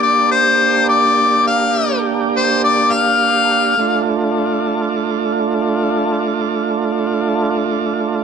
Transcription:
Already playing: tonewheel organ A#3 D4 G4
0.02 harmonica D5
0.31 harmonica C5
0.89 harmonica D5
1.47 harmonica F5
2.37 harmonica C5
2.65 harmonica D5
2.93 harmonica F5
3.77 tonewheel organ A3 D4 F4

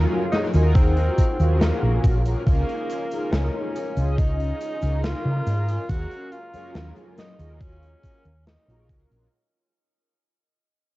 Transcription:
Already playing: analog polysynth F#3 C#4 F4 G#4 A#4
0.32 tenor saxophone D#4, snare, closed hi-hat, cabasa
0.53 fingered electric bass D#2, analog polysynth D#4 F4 F#4 G#4 A#4, closed hi-hat, cabasa
0.75 tenor saxophone C4, kick, closed hi-hat, cabasa
0.97 closed hi-hat
1.18 kick, closed hi-hat, cabasa
1.39 fingered electric bass D#2, analog polysynth C#4 F4 F#4 G#4 A#4, closed hi-hat, cabasa
1.61 tenor saxophone A#3, snare, closed hi-hat, cabasa
1.82 fingered electric bass A#1
2.04 fingered electric bass A#1, kick, closed hi-hat, cabasa
2.25 analog polysynth C#4 F4 F#4 G#4 A#4, closed hi-hat, cabasa
2.46 fingered electric bass C#2, tenor saxophone A#3, analog polysynth C#4 D#4 F4 G#4 A#4, kick, closed hi-hat, cabasa
2.69 closed hi-hat
2.90 closed hi-hat, cabasa
3.11 analog polysynth C#4 D#4 F4 G#4 A#4, closed hi-hat, cabasa
3.32 fingered electric bass C#2, tenor saxophone C#4, snare, closed hi-hat, cabasa
3.76 closed hi-hat, cabasa
3.96 fingered electric bass C#2, analog polysynth C#4 D#4 F4 G#4 D#5, closed hi-hat, cabasa
4.18 tenor saxophone D#4, kick, closed hi-hat, cabasa
4.40 closed hi-hat
4.61 closed hi-hat, cabasa
4.81 fingered electric bass C#2, analog polysynth C#4 D#4 F4 G#4 A#4, closed hi-hat, cabasa
5.04 tenor saxophone F4, snare, closed hi-hat, cabasa
5.25 fingered electric bass C#3
5.47 fingered electric bass G#2, closed hi-hat, cabasa
5.69 closed hi-hat, cabasa
5.89 fingered electric bass D#2, analog polysynth C#4 F#4 G#4 A#4, tenor saxophone F#4, kick, closed hi-hat, cabasa
6.11 closed hi-hat
6.32 tenor saxophone F4, closed hi-hat, cabasa
6.53 analog polysynth F#3 C#4 F4 G#4 A#4, muted fingered electric bass stroke, closed hi-hat, cabasa
6.75 fingered electric bass D#2, snare, closed hi-hat, cabasa
6.96 closed hi-hat
7.18 tenor saxophone D#4, snare, closed hi-hat, cabasa
7.39 fingered electric bass D#2, analog polysynth C#4 F4 F#4 G#4 A#4, closed hi-hat, cabasa
7.61 tenor saxophone C#4, kick, closed hi-hat, cabasa
7.83 closed hi-hat
8.03 analog polysynth C#4 F4 F#4 G#4 A#4, kick, closed hi-hat, cabasa
8.25 fingered electric bass D#2, closed hi-hat, cabasa
8.46 tenor saxophone D#4, snare, closed hi-hat, cabasa
8.67 fingered electric bass A#1, analog polysynth C#4 F4 F#4 G#4 A#4, closed hi-hat
8.89 fingered electric bass C#2, kick, closed hi-hat, cabasa
9.11 fingered electric bass A#1, closed hi-hat, cabasa

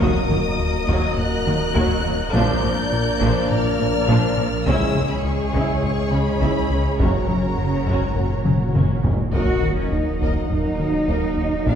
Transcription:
Already playing: analog synth pad F#3 A#3, french horn section A#3 F#4, violin section A#4
0.00 detuned saw bass D#1, double bass section D#2, cello section D#2, analog synth bass D#2, viola section F#3 F#4, analog synth pad A#4 D#5, violin section D#5 D#6, taiko
0.30 double bass section D#2, cello section D#2, analog synth bass D#3, viola section F#3 A#3, taiko low-mid
0.59 analog synth bass D#2
0.88 cello section D#2, analog synth bass D#2, double bass section D#2, viola section F#3 F#4, taiko
1.17 analog synth bass D#2, violin section F#6, taiko low-mid
1.46 cello section D#2, double bass section D#2, analog synth bass D#3, viola section F#3 D#4
1.75 analog synth bass D#2, cello section D#2, double bass section D#2, viola section F#3 F#4, taiko
2.05 double bass section D#2, analog synth bass D#2, cello section D#2, viola section F#3 A#3
2.33 detuned saw bass A#1, double bass section A#1, analog synth bass A#2, cello section A#2, analog synth pad F3 A#3 D5, viola section F3 D4, french horn section A#3 D4, violin section A#4 D5 G6, taiko
2.63 double bass section A#1, cello section A#2, viola section F3, analog synth bass A#3, taiko low-mid
2.93 analog synth bass A#2
3.21 double bass section A#1, analog synth bass A#2, cello section A#2, viola section F3 D4, taiko
3.50 analog synth bass A#2, violin section F6, taiko low-mid
3.80 double bass section A#1, cello section A#2, viola section F3 A#3, analog synth bass A#3
4.08 double bass section A#1, analog synth bass A#2, cello section A#2, viola section F3 D4, taiko
4.37 double bass section A#1, analog synth bass A#2, cello section A#2, viola section F3
4.66 analog synth bass C#2, detuned saw bass C#2, double bass section C#2, analog synth pad C#3 C#4 G#4 C#5, cello section C#3, french horn section G#3 C#4, viola section C#4 E4, violin section G#4 C#5 E6, taiko
4.95 double bass section C#2, analog synth bass C#3, cello section C#3, viola section G#3 C#4, taiko low-mid
5.11 violin section B5
5.24 analog synth bass C#2, violin section C#6
5.54 analog synth bass C#2, double bass section C#2, cello section C#3, viola section C#4 E4, taiko
5.83 analog synth bass C#2, violin section C#6, taiko low-mid
6.11 double bass section C#2, analog synth bass C#3, cello section C#3, viola section C#4, violin section B5
6.41 analog synth bass C#2, double bass section C#2, cello section C#3, viola section C#4 E4, taiko
6.70 analog synth bass C#2, double bass section C#2, cello section C#3, viola section G#3 C#4
6.99 detuned saw bass F#1, double bass section F#1, analog synth bass F#2, cello section F#2, french horn section F#3, viola section C#4 F#4, analog synth pad F#4, violin section A#4 A#5, taiko
7.28 double bass section F#1, cello section F#2, analog synth bass F#3, viola section A#3 C#4, taiko low-mid
7.57 analog synth bass F#2, cello section C#3
7.87 double bass section F#1, analog synth bass F#2, viola section C#4 F#4, taiko
8.03 cello section G#2
8.16 analog synth bass F#2, cello section A#2, taiko low-mid
8.45 double bass section F#1, analog synth bass F#3, viola section C#4, taiko mid
8.74 double bass section F#1, analog synth bass F#2, cello section A#2, viola section C#4 F#4, taiko mid
9.03 double bass section F#1, analog synth bass F#2, viola section A#3 C#4, taiko low
9.32 detuned saw bass D#1, double bass section D#2, analog synth bass D#2, analog synth pad F#3 A#3 A#4 D#5, french horn section A#3, cello section F#4, viola section A#4, violin section D#5 F#5, taiko, sub drop
9.62 double bass section D#2, analog synth bass D#3, violin section F#4, viola section A#4, taiko low-mid
9.77 french horn section E3, cello section C#4
9.92 analog synth bass D#2, french horn section F#3, cello section D#4
10.21 double bass section D#2, analog synth bass D#2, viola section A#4, violin section D#5, taiko
10.50 analog synth bass D#2, french horn section F#3, cello section D#4, taiko low-mid
10.79 double bass section D#2, analog synth bass D#3, violin section A#4, viola section A#4
11.08 analog synth bass D#2, double bass section D#2, viola section A#4, violin section D#5, taiko
11.36 analog synth bass D#2, double bass section D#2, violin section F#4, viola section A#4
11.66 detuned saw bass A#1, double bass section A#1, analog synth bass A#2, analog synth pad F3 F5, french horn section F3, cello section D4, viola section A#4, violin section F5, taiko

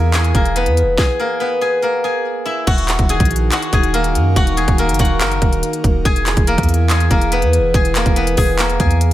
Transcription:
Already playing: 808-style bass E2, analog synth pad E3 E4 G#4, guzheng A#3 F#4 G#4 A#4 G#5
0.14 guzheng G#4 G#5, clap, closed hi-hat
0.24 closed hi-hat
0.35 808-style bass E1, guzheng A#3 A#4, kick, closed hi-hat
0.45 closed hi-hat
0.56 guzheng B3 B4, closed hi-hat
0.66 808-style bass E2, closed hi-hat
0.77 closed hi-hat
0.82 808-style bass E1
0.98 guzheng G#4 G#5, kick, snare
1.20 guzheng A#3 A#4
1.40 guzheng B3 B4
1.61 guzheng G#4 G#5
1.82 guzheng A#3 A#4
2.04 guzheng G#4 G#5
2.46 guzheng E4 E5
2.67 808-style bass D#1, analog synth pad D#3 D#4 F#4 A#4, guzheng F#4 F#5, kick, closed hi-hat, crash
2.78 closed hi-hat
2.88 clap, closed hi-hat
2.99 808-style bass D#1, kick, closed hi-hat
3.09 guzheng G#4 G#5, closed hi-hat
3.20 808-style bass A#1, kick, closed hi-hat
3.25 closed hi-hat
3.31 closed hi-hat
3.36 closed hi-hat
3.52 guzheng F#4 F#5, clap, closed hi-hat
3.62 closed hi-hat
3.73 808-style bass D#1, guzheng G#4 G#5, kick, closed hi-hat
3.83 closed hi-hat
3.94 guzheng A#3 A#4, closed hi-hat
4.04 closed hi-hat
4.15 808-style bass F#2, closed hi-hat
4.36 808-style bass D#1, guzheng F#4 F#5, kick, closed hi-hat
4.47 closed hi-hat
4.57 guzheng G#4 G#5, closed hi-hat
4.68 808-style bass D#1, kick, closed hi-hat
4.78 guzheng A#3 A#4, closed hi-hat
4.89 808-style bass F#1, closed hi-hat
4.94 closed hi-hat
4.99 808-style bass D#1, guzheng F#4 F#5, kick, closed hi-hat, open hi-hat
5.05 closed hi-hat
5.20 808-style bass F#1, guzheng A#3 A#4, clap, closed hi-hat
5.31 closed hi-hat
5.42 808-style bass D#1, kick, closed hi-hat
5.53 closed hi-hat
5.63 closed hi-hat
5.73 closed hi-hat
5.84 808-style bass D#1, kick, closed hi-hat
6.05 808-style bass E1, analog synth pad E3 E4 G#4, guzheng G#4 G#5, kick, closed hi-hat
6.16 closed hi-hat
6.26 clap, closed hi-hat
6.37 808-style bass E1, kick, closed hi-hat
6.47 guzheng A#3 A#4, closed hi-hat
6.58 808-style bass E2, kick, closed hi-hat
6.63 closed hi-hat
6.69 closed hi-hat
6.74 closed hi-hat
6.90 guzheng G#4 G#5, clap, closed hi-hat
7.00 closed hi-hat
7.11 808-style bass E1, guzheng A#3 A#4, kick, closed hi-hat
7.21 closed hi-hat
7.32 guzheng B3 B4, closed hi-hat
7.42 808-style bass E2, closed hi-hat
7.53 closed hi-hat
7.58 808-style bass E1
7.74 808-style bass E1, guzheng G#4 G#5, kick, closed hi-hat
7.85 closed hi-hat
7.95 guzheng A#3 A#4, clap, closed hi-hat
8.06 808-style bass E1, kick, closed hi-hat
8.16 guzheng B3 B4, closed hi-hat
8.27 closed hi-hat
8.37 808-style bass E1, guzheng G#4 G#5, kick, open hi-hat
8.58 guzheng A#3 A#4, clap, closed hi-hat
8.69 closed hi-hat
8.80 808-style bass E2, guzheng G#4 G#5, kick, closed hi-hat
8.91 closed hi-hat
9.01 closed hi-hat

